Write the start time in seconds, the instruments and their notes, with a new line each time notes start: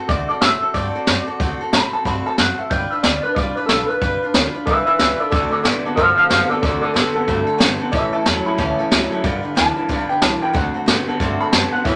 0.09 upright bass D2, steel-string acoustic guitar D3 A3 C4 F#4 A4, clean electric guitar D5, kick, open hi-hat
0.29 steel-string acoustic guitar C4 F#4 A4, clean electric guitar D5
0.41 upright bass A2, steel-string acoustic guitar A3 C4 F#4 A4, clean electric guitar E5, snare, open hi-hat
0.62 steel-string acoustic guitar C4 F#4 A4, muted upright bass stroke
0.74 upright bass G2, steel-string acoustic guitar D3 A3 C4 F#4 A4, clean electric guitar D5, kick, open hi-hat
0.95 steel-string acoustic guitar C4 F#4 A4, muted upright bass stroke
1.07 upright bass F#2, steel-string acoustic guitar A3 C4 F#4 A4, snare, open hi-hat
1.27 steel-string acoustic guitar C4 F#4 A4, muted upright bass stroke
1.40 upright bass D2, steel-string acoustic guitar D3 A3 C4 F#4 A4, kick, open hi-hat
1.60 steel-string acoustic guitar C4 F#4 A4, muted upright bass stroke
1.73 upright bass A2, steel-string acoustic guitar A3 C4 F#4 A4, clean electric guitar B5, snare, open hi-hat
1.93 steel-string acoustic guitar C4 F#4 A4, clean electric guitar A5, muted upright bass stroke
2.05 upright bass G2, steel-string acoustic guitar D3 A3 C4 F#4 A4, clean electric guitar B5, kick, open hi-hat
2.26 steel-string acoustic guitar C4 F#4 A4, clean electric guitar A5
2.38 upright bass F#2, steel-string acoustic guitar A3 C4 F#4 A4, clean electric guitar F#5, snare
2.58 steel-string acoustic guitar C4 F#4 A4, clean electric guitar E5, muted upright bass stroke
2.70 upright bass G1, steel-string acoustic guitar G3 D4 F4 B4, clean electric guitar G5, kick, open hi-hat
2.91 steel-string acoustic guitar D4 F4 B4, clean electric guitar E5, muted upright bass stroke
3.03 upright bass D2, steel-string acoustic guitar G3 D4 F4 B4, clean electric guitar D5, snare, open hi-hat
3.23 steel-string acoustic guitar D4 F4 B4, clean electric guitar B4
3.35 upright bass C2, steel-string acoustic guitar G3 D4 F4 B4, clean electric guitar D5, kick, open hi-hat
3.55 steel-string acoustic guitar D4 F4 B4, clean electric guitar B4, muted upright bass stroke
3.66 upright bass B1, steel-string acoustic guitar G3 D4, clean electric guitar A4, snare, open hi-hat
3.71 steel-string acoustic guitar F4 B4
3.88 steel-string acoustic guitar F4 B4, clean electric guitar B4
3.92 steel-string acoustic guitar D4
4.01 upright bass G1, steel-string acoustic guitar G3 D4 F4 B4, kick, open hi-hat
4.23 steel-string acoustic guitar D4 F4 B4
4.34 upright bass D2, steel-string acoustic guitar G3 D4 F4 B4, snare, open hi-hat
4.55 steel-string acoustic guitar D4 F4 B4
4.66 upright bass C2, steel-string acoustic guitar G3 D4 F4 B4, clean electric guitar B4 E5, kick, open hi-hat
4.85 steel-string acoustic guitar D4 F4 B4, clean electric guitar B4 E5, muted upright bass stroke
4.99 upright bass C#2, steel-string acoustic guitar G3 D4 F4 B4, clean electric guitar B4 E5, snare, open hi-hat
5.19 steel-string acoustic guitar D4 F4 B4, clean electric guitar A4 D5
5.31 upright bass D2, steel-string acoustic guitar D3 A3 C4 F#4 A4, clean electric guitar D3 A3 A4 D5, kick, open hi-hat
5.51 steel-string acoustic guitar C4 F#4 A4, clean electric guitar A4 D5, muted upright bass stroke
5.63 upright bass A2, clean electric guitar D3 B3 D5, steel-string acoustic guitar A3 C4 F#4 A4, snare
5.85 clean electric guitar D3 B3, steel-string acoustic guitar C4 F#4 A4, muted upright bass stroke
5.96 upright bass G2, steel-string acoustic guitar D3 A3 C4 F#4 A4, clean electric guitar D3 A3 C5 F5, kick, open hi-hat
6.15 steel-string acoustic guitar F#4 A4, clean electric guitar C5 F5
6.20 steel-string acoustic guitar C4
6.29 upright bass F#2, clean electric guitar D3 B3 C5 F5, steel-string acoustic guitar A3 C4 F#4 A4, snare, open hi-hat
6.49 clean electric guitar D3 B3 A4 D5, steel-string acoustic guitar C4 F#4 A4, muted upright bass stroke
6.62 upright bass D2, clean electric guitar D3 A3 A4 D5, steel-string acoustic guitar D3 A3 C4 F#4 A4, kick, open hi-hat
6.81 steel-string acoustic guitar C4 F#4 A4, clean electric guitar A4 D5
6.94 upright bass A2, clean electric guitar D3 B3 A4, steel-string acoustic guitar A3 C4 F#4 A4, snare, open hi-hat
7.14 clean electric guitar D3 B3, steel-string acoustic guitar C4 F#4 A4, muted upright bass stroke
7.27 upright bass G2, clean electric guitar D3 A3, steel-string acoustic guitar D3 A3 C4 F#4 A4, kick, open hi-hat
7.47 steel-string acoustic guitar C4 F#4 A4
7.58 upright bass G1, clean electric guitar D3 B3, steel-string acoustic guitar A3 C4 F#4 A4, snare
7.80 clean electric guitar D3 B3, steel-string acoustic guitar C4 F#4 A4
7.92 upright bass A1, steel-string acoustic guitar A2 E3 G3 C#4 E4 A4, clean electric guitar A2 E3 E5, kick, open hi-hat
8.13 steel-string acoustic guitar G3 C#4 E4 A4, clean electric guitar A5
8.25 upright bass E2, clean electric guitar A2 F#3, steel-string acoustic guitar G3 C#4 E4 A4, snare, open hi-hat
8.45 clean electric guitar A2 F#3 B5, steel-string acoustic guitar G3 C#4 E4 A4
8.58 upright bass D2, steel-string acoustic guitar A2 E3 G3 C#4 E4 A4, clean electric guitar A2 E3 A5, kick, open hi-hat
8.79 steel-string acoustic guitar G3 C#4 E4 A4
8.91 upright bass C#2, clean electric guitar A2 F#3, steel-string acoustic guitar G3 C#4 E4 A4, snare, open hi-hat
9.11 clean electric guitar A2 F#3, steel-string acoustic guitar G3 C#4 E4 A4
9.24 upright bass G1, clean electric guitar G2 D3, steel-string acoustic guitar G3 D4 F4 B4, kick, open hi-hat
9.43 steel-string acoustic guitar D4 F4 B4
9.55 upright bass D2, clean electric guitar G2 E3 A5, steel-string acoustic guitar G3 D4 F4 B4, snare, open hi-hat
9.77 clean electric guitar G2 E3, steel-string acoustic guitar D4 F4 B4, muted upright bass stroke
9.89 upright bass C2, clean electric guitar G2 D3, steel-string acoustic guitar G3 D4 F4 B4, kick, open hi-hat
10.09 steel-string acoustic guitar D4 F4 B4, clean electric guitar G5
10.22 upright bass C2, clean electric guitar G2 E3 A5, steel-string acoustic guitar G3 D4 F4 B4, snare, open hi-hat
10.42 clean electric guitar G2 E3 G5, steel-string acoustic guitar D4 F4 B4
10.53 upright bass D2, steel-string acoustic guitar D3 A3 C4 F#4 A4, clean electric guitar D3 A3 F#5, kick, open hi-hat
10.74 steel-string acoustic guitar C4 F#4 A4
10.86 upright bass A2, clean electric guitar D3 B3, steel-string acoustic guitar A3 C4 F#4 A4, snare
11.08 clean electric guitar D3 B3, steel-string acoustic guitar C4 F#4 A4, muted upright bass stroke
11.19 upright bass G2, clean electric guitar D3 A3, steel-string acoustic guitar D3 A3 C4 F#4 A4, kick, open hi-hat
11.40 steel-string acoustic guitar C4 F#4 A4, clean electric guitar B5
11.52 upright bass F#2, clean electric guitar D3 B3 A5, steel-string acoustic guitar A3 C4 F#4 A4, snare, open hi-hat
11.72 clean electric guitar D3 B3 F#5, steel-string acoustic guitar F#4 A4, muted upright bass stroke
11.76 steel-string acoustic guitar C4
11.84 upright bass A1, clean electric guitar A2 E3 E5, steel-string acoustic guitar A2 E3 G3 C#4 E4 A4, kick, open hi-hat